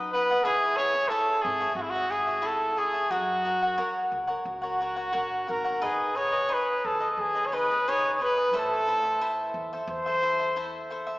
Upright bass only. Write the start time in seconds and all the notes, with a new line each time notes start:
Already playing: F#2
0.45 C#2
1.44 G#1
1.75 G#1
3.10 F#2
4.12 C#2
4.45 C#2
5.14 A#1
5.49 G#1
5.83 G#2
6.84 D#2
7.17 D#2
8.53 A2
9.54 E2
9.87 E2